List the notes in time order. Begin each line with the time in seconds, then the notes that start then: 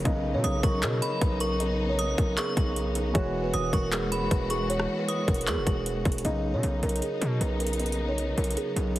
Already playing: C#3 F#3
0.04 B1 C#3 B3 D#4 D#5, kick, closed hi-hat
0.34 B2 C#5
0.44 B1 D#6, closed hi-hat
0.63 B1 A#4 C#6, kick, closed hi-hat
0.83 B2 G#4, clap, closed hi-hat
1.02 F#4 B5, closed hi-hat
1.21 B1 B4, kick, closed hi-hat
1.40 A#4 C#6, closed hi-hat
1.60 D#5, closed hi-hat
1.89 C#5
1.99 D#6, closed hi-hat
2.18 B1 A#4, kick, closed hi-hat
2.37 G#4 C#6, clap, closed hi-hat
2.57 B1 F#4, kick, closed hi-hat
2.76 closed hi-hat
2.95 F#4, closed hi-hat
3.14 E1 E3 G#3 F#4 C#5, kick, closed hi-hat
3.44 B4
3.54 E1 D#6, closed hi-hat
3.73 E1 A#4 C#6, kick, closed hi-hat
3.92 G#4, clap, closed hi-hat
4.12 F#4 B5, closed hi-hat
4.31 E1 B4, kick, closed hi-hat
4.50 G#4 C#6, closed hi-hat
4.70 C#5, closed hi-hat
4.80 cross-stick
4.99 B4
5.08 D#6, closed hi-hat
5.28 E1 A#4, kick, closed hi-hat
5.34 closed hi-hat
5.41 closed hi-hat
5.47 E2 G#4 C#6, clap, closed hi-hat
5.57 E1
5.67 E1 F#4, kick, closed hi-hat
5.86 closed hi-hat
6.05 E1 F#4, kick, closed hi-hat
6.12 closed hi-hat
6.18 closed hi-hat
6.24 B1 C#3 F#3 B3 D#4 D#5, closed hi-hat
6.54 B2 C#5
6.63 B1, closed hi-hat
6.83 B1 A#4, closed hi-hat
6.89 closed hi-hat
6.96 closed hi-hat
7.02 G#4, closed hi-hat
7.21 B2 F#4, closed hi-hat
7.41 B1 B4, closed hi-hat
7.60 A#4, closed hi-hat
7.67 closed hi-hat
7.73 closed hi-hat
7.79 D#5, closed hi-hat
7.86 closed hi-hat
7.92 closed hi-hat
8.09 C#5
8.18 closed hi-hat
8.38 B1 A#4, closed hi-hat
8.44 closed hi-hat
8.51 closed hi-hat
8.57 G#4, closed hi-hat
8.76 B1 F#4, closed hi-hat
8.96 closed hi-hat